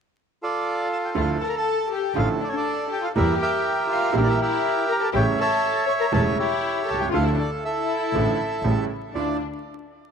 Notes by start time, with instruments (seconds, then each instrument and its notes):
0.43 bandoneon F4 A4 D5
0.93 bandoneon A5
1.05 bandoneon G5
1.15 upright piano D2 D3 F3 A3 E4, double bass D2, violin section F4, bandoneon A4
1.20 bandoneon F5
1.41 violin section A4, bandoneon A5
1.46 violin section A#4, bandoneon A#5
1.56 violin section A4, bandoneon A5
1.92 violin section G4, bandoneon G5
2.15 double bass A1, upright piano A1 A2 D3 F3 A3 E4, violin section F4, bandoneon A4 F5
2.41 violin section D4, bandoneon D5
2.47 violin section C#4, bandoneon C#5
2.56 violin section D4, bandoneon D5
2.89 violin section G4, bandoneon G5
3.01 violin section F4, bandoneon F5
3.15 upright piano E2 E3 G3 A#3 G4, double bass E2, violin section E4, bandoneon G4 A#4 E5
3.37 violin section G4
3.42 bandoneon A#4 E5 G5
3.89 violin section F4, bandoneon F5
4.12 upright piano A#1 A#2 E3 G3 A#3 G4, double bass A#1, violin section E4
4.16 violin section D4, bandoneon G4 A#4 E5
4.23 violin section E4, bandoneon D5
4.30 bandoneon E5
4.39 violin section E4, bandoneon G4 A#4 E5
4.88 violin section A#4
4.92 bandoneon A#5
5.01 violin section A4, bandoneon A5
5.13 upright piano A1 A2 C#3 G3 A3 E4, double bass A1, violin section G4, bandoneon C#5 E5 G5
5.38 violin section A4, bandoneon C#5 E5 A5
5.86 violin section C#5, bandoneon C#6
6.00 violin section A#4, bandoneon A#5
6.12 upright piano E1 E2 C#3 G3 A3 E4, double bass E1, violin section A4, bandoneon C#5 E5 A5
6.37 violin section E4, bandoneon G4 C#5 E5
6.85 double bass C2, violin section A4, bandoneon A5
6.94 upright piano B1
6.99 upright piano C2, violin section G4, bandoneon G5
7.07 upright piano C#2, violin section F4
7.13 double bass D2, upright piano D2 D3 F3 A3 E4, bandoneon A4 F5
7.23 violin section E4
7.27 bandoneon E5
7.35 violin section D4
7.40 bandoneon D5
7.61 violin section E4, bandoneon E5
7.66 bandoneon A4
8.13 double bass A1, upright piano A1 A2 D3 F3 A3 E4
8.62 double bass A1, upright piano A1 A2 C#3 G3 A3 E4
9.14 double bass D2, upright piano D2 D4 E4 F4, violin section D4, bandoneon D5